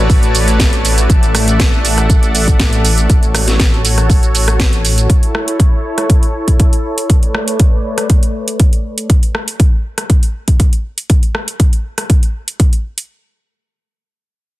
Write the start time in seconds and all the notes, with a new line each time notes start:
Already playing: A1 A3 F#4 A4 B4 C#5 D5 A5
0.10 kick, open hi-hat, shaker
0.23 closed hi-hat, shaker
0.35 open hi-hat, shaker
0.48 closed hi-hat, shaker
0.60 kick, snare, closed hi-hat, shaker
0.73 closed hi-hat, shaker
0.85 open hi-hat, shaker
0.98 closed hi-hat, shaker
1.10 A1 A4 D5 E5 F#5, kick, closed hi-hat, shaker
1.23 closed hi-hat, shaker
1.35 cross-stick, open hi-hat, shaker
1.48 closed hi-hat, shaker
1.60 kick, snare, closed hi-hat, shaker
1.74 shaker
1.85 open hi-hat, shaker
1.98 cross-stick, closed hi-hat, shaker
2.10 kick, closed hi-hat, shaker
2.23 closed hi-hat, shaker
2.35 open hi-hat, shaker
2.48 kick, closed hi-hat, shaker
2.60 kick, snare, closed hi-hat, shaker
2.73 closed hi-hat, shaker
2.85 open hi-hat, shaker
2.98 closed hi-hat, shaker
3.10 A1 F#4 A4 C#5, kick, closed hi-hat, shaker
3.23 closed hi-hat, shaker
3.35 cross-stick, open hi-hat, shaker
3.48 snare, closed hi-hat, shaker
3.60 kick, snare, closed hi-hat, shaker
3.73 shaker
3.85 open hi-hat, shaker
3.98 cross-stick, closed hi-hat, shaker
4.10 kick, open hi-hat, shaker
4.23 closed hi-hat, shaker
4.35 open hi-hat, shaker
4.48 cross-stick, closed hi-hat, shaker
4.60 kick, snare, closed hi-hat, shaker
4.73 closed hi-hat, shaker
4.85 open hi-hat, shaker
4.98 closed hi-hat, shaker
5.10 E4 A4 C#5, kick, closed hi-hat
5.23 closed hi-hat
5.35 cross-stick
5.48 closed hi-hat
5.60 kick, closed hi-hat
5.98 cross-stick, closed hi-hat
6.10 kick, closed hi-hat
6.23 closed hi-hat
6.48 kick, closed hi-hat
6.60 kick, closed hi-hat
6.73 closed hi-hat
6.98 closed hi-hat
7.10 A3 B4 C#5 D5, kick, closed hi-hat
7.23 closed hi-hat
7.35 cross-stick
7.48 closed hi-hat
7.60 kick, closed hi-hat
7.98 cross-stick, closed hi-hat
8.10 kick, closed hi-hat
8.23 closed hi-hat
8.48 closed hi-hat
8.60 kick, closed hi-hat
8.73 closed hi-hat
8.98 closed hi-hat
9.10 kick, closed hi-hat
9.23 closed hi-hat
9.35 cross-stick
9.48 closed hi-hat
9.60 kick, closed hi-hat
9.98 cross-stick, closed hi-hat
10.10 kick, closed hi-hat
10.23 closed hi-hat
10.48 kick, closed hi-hat
10.60 kick, closed hi-hat
10.73 closed hi-hat
10.98 closed hi-hat
11.10 kick, closed hi-hat
11.23 closed hi-hat
11.35 cross-stick
11.48 closed hi-hat
11.60 kick, closed hi-hat
11.73 closed hi-hat
11.98 cross-stick, closed hi-hat
12.10 kick, closed hi-hat
12.23 closed hi-hat
12.48 closed hi-hat
12.60 kick, closed hi-hat
12.73 closed hi-hat
12.98 closed hi-hat